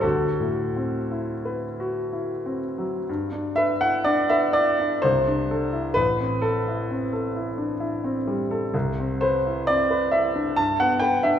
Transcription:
\new Staff \with { instrumentName = "Grand piano" } { \time 3/4 \key g \major \tempo 4 = 63 << { <fis' a'>2~ <fis' a'>8 r8 | r8 e''16 fis''16 d''16 e''16 d''8 c''4 | b'8 a'2~ a'8 | r8 c''8 d''8 e''8 a''16 fis''16 g''16 e''16 | } \\ { \tuplet 3/2 { d,8 a,8 c'8 e'8 b'8 fis'8 e'8 c'8 fis8 } | g,16 d'16 b'16 e'16 d'16 b'16 e'16 d'16 c,16 d'16 a'16 e'16 | a,,16 c'8 e'16 c'16 a'16 e'16 d'16 e'16 c'16 g16 a'16 | c,16 c'16 b'16 e'16 c'16 b'16 e'16 d'16 g,16 b16 b'16 d'16 | } >> }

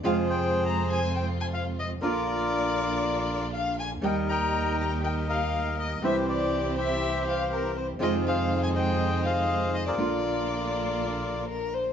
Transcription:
<<
  \new Staff \with { instrumentName = "Violin" } { \time 4/4 \key f \dorian \tempo 4 = 121 f''8 g''8. bes''8 aes''8 g''8 aes''16 f''8 ees''8 | d''2. f''8 aes''8 | g''8 bes''4 bes''8 g''8 f''4 ees''8 | e''8 d''4 e''4 f''8 bes'8 c''8 |
ees''8 f''8. aes''16 g''4 f''4 ees''16 d''16~ | d''2. bes'8 c''8 | }
  \new Staff \with { instrumentName = "Bandoneon" } { \time 4/4 \key f \dorian << { f''8 g''8. bes''8 aes''8 g''8 aes''16 f''8 ees''8 | d''2. f''8 aes''8 | g''8 bes''4 bes''8 g''8 f''4 ees''8 | e''8 d''4 e''4 f''8 bes'8 c''8 |
ees''8 f''8. aes''16 g''4 f''4 ees''16 d''16~ | d''2. r4 | } \\ { <aes' c''>8 c''2 r4. | <f' bes'>2. r4 | <bes' ees''>8 <ees'' g''>4. <bes' ees''>8 bes'4. | <g' c''>8 g'4 <g' c''>2 r8 |
<aes' c''>8 <aes' c''>4 <c'' ees''>4 <aes' c''>4~ <aes' c''>16 <f' bes'>16~ | <f' bes'>2. r4 | } >> }
  \new Staff \with { instrumentName = "String section" } { \time 4/4 \key f \dorian <aes c' f'>1 | <bes d' f'>1 | <bes ees' g'>1 | <c' e' g'>1 |
<aes ees' f'>1 | <bes d' f'>1 | }
  \new Staff \with { instrumentName = "Nylon-string guitar" } { \time 4/4 \key f \dorian <c f aes c' f'>1 | <d bes d' f'>1 | <ees g bes ees' g'>1 | <c e g c' e'>1 |
<c ees aes c' f'>1 | <d bes d' f'>1 | }
  \new Staff \with { instrumentName = "Double bass" } { \clef bass \time 4/4 \key f \dorian f,1 | bes,,1 | ees,1 | c,1 |
f,1 | bes,,1 | }
>>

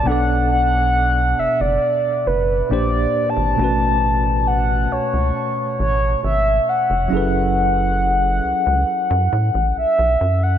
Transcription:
<<
  \new Staff \with { instrumentName = "Soft synth lead" } { \time 4/4 \key a \major \tempo 4 = 68 fis''8 fis''4 e''16 d''8. b'8 \tuplet 3/2 { d''4 a''8~ } | a''4 fis''8 cis''4 cis''8 e''8 fis''8~ | fis''2. e''8. fis''16 | }
  \new Staff \with { instrumentName = "Tine electric piano" } { \time 4/4 \key a \major <b, b d' a' d''>2. <bes, bes d' g' c''>4 | <b, a cis' fis' b'>1 | <fis cis' e' gis' a' b'>1 | }
  \new Staff \with { instrumentName = "Analog synth bass" } { \clef bass \time 4/4 \key a \major b,,4. fis,,16 fis,,16 r8 fis,,8 bes,,8 r16 gis,,16 | a,,4. cis,16 cis,16 r8 a,,8 gis,,8 r16 f,,16 | fis,,4. cis,16 cis,16 r16 fis,16 a,16 a,,16 b,,16 b,,16 fis,8 | }
>>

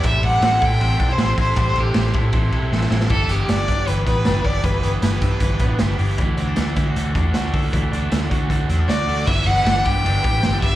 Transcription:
<<
  \new Staff \with { instrumentName = "Violin" } { \time 4/4 \key g \major \tempo 4 = 156 e''8 fis''4 g''4~ g''16 c''8. c''8 | c''8 g'4 r2 r8 | a'8 g'8 d''4 b'8 b'4 d''8 | b'4 b'2~ b'8 r8 |
r1 | r2. d''4 | e''8 fis''4 g''2 e''8 | }
  \new Staff \with { instrumentName = "String section" } { \time 4/4 \key g \major <g' a' c'''>1~ | <g' a' c'''>1 | r1 | r1 |
r1 | r1 | <g' b' e'''>1 | }
  \new Staff \with { instrumentName = "Overdriven electric guitar" } { \time 4/4 \key g \major <a, e g c' e' a'>8 <g c' e' a'>8 <a, e g c' e' a'>8 <g c' e' a'>8 <g c' e' a'>8 <g c' e' a'>8 <a, e g c' e' a'>8 <g c' e' a'>8 | <a, e g c' e' a'>8 <g c' e' a'>8 <a, e g c' e' a'>8 <g c' e' a'>8 <g c' e' a'>8 <g c' e' a'>8 <a, e g c' e' a'>8 <g c' e' a'>8 | <g, e g b d' g'>8 <g b d' g'>8 <g b d' g'>8 <g b d' g'>8 <g, e g b d' g'>8 <g b d' g'>8 <g b d' g'>8 <g b d' g'>8 | <g, e g b d' g'>8 <g b d' g'>8 <g b d' g'>8 <g b d' g'>8 <g, e g b d' g'>8 <g b d' g'>8 <g b d' g'>8 <g b d' g'>8 |
<d e a d' fis' d''>8 <a d' fis' d''>8 <a d' fis' d''>8 <a d' fis' d''>8 <d e a d' fis' d''>8 <a d' fis' d''>8 <a d' fis' d''>8 <a d' fis' d''>8 | <d e a d' fis' d''>8 <a d' fis' d''>8 <a d' fis' d''>8 <a d' fis' d''>8 <d e a d' fis' d''>8 <a d' fis' d''>8 <a d' fis' d''>8 <a d' fis' d''>8 | <g, e b d' e' b'>8 <b d' e' b'>8 <g, e b d' e' b'>8 <b d' e' b'>8 <b d' e' b'>8 <b d' e' b'>8 <g, e b d' e' b'>8 <b d' e' b'>8 | }
  \new Staff \with { instrumentName = "Clean electric guitar" } { \time 4/4 \key g \major g8 g8 c'8 e'8 c'8 d'16 e'16 c'8 e'8 | g8 g8 c'8 e'8 c'8 e'8 c'8 e'8 | e8 b8 e8 d'8 e8 b8 d'8 e8 | e8 b8 e8 c'16 d'16 e8 b8 c'16 d'16 e8 |
e8 c'16 d'16 a8 e'16 fis'16 a8 d'8 fis'8 a8 | e8 d'8 a8 fis'8 a8 c'16 d'16 fis'8 a8 | e8 b8 d'8 g'8 d'8 g'8 c'16 d'16 g'8 | }
  \new Staff \with { instrumentName = "Fingered electric bass" } { \clef bass \time 4/4 \key g \major a,,8 a,,8 a,,8 a,8 a,,8 b,,8 a,,8 a,,8 | a,,8 a,,8 a,,8 a,8 a,,8 b,,8 a,,8 a,,8 | g,,8 g,,8 g,,8 g,8 g,,8 a,,8 g,,8 g,,8 | g,,8 g,,8 g,,8 g,8 g,,8 a,,8 g,,8 g,,8 |
d,8 d,8 d,8 d8 d,8 e,8 d,8 d,8 | d,8 d,8 d,8 d8 d,8 e,8 d,8 d,8 | g,,8 g,,8 g,,8 g,8 g,,8 a,,8 g,,8 g,,8 | }
  \new DrumStaff \with { instrumentName = "Drums" } \drummode { \time 4/4 <hhp bd cymr>8 cymr8 <cymr sn>8 <bd cymr>8 cymr8 <bd cymr>8 <cymr sn>8 <hho bd cymr>8 | <hhp bd cymr>8 cymr8 <cymr sn>8 <bd cymr sn>8 <bd cymr>8 cymr8 sn16 sn16 sn16 sn16 | <cymc bd>8 hh8 <hh sn>8 <hh bd>8 hh8 <hh bd>8 <hh sn>8 <hho bd>8 | <hh bd>8 hh8 <hh sn>8 <hh bd>8 <hh bd>8 <hh bd>8 <hh sn>8 hho8 |
<hh bd>8 hh8 <hh sn>8 <hh bd sn>8 hh8 <hh bd>8 <hh sn>8 <hho bd>8 | <hh bd>8 hh8 <hh sn>8 <hh bd>8 <hh bd>8 hh8 <hh sn>8 hho8 | <cymc bd>8 cymr8 <cymr sn>8 <bd cymr sn>8 cymr8 <bd cymr>8 <cymr sn>8 <hho bd cymr>8 | }
>>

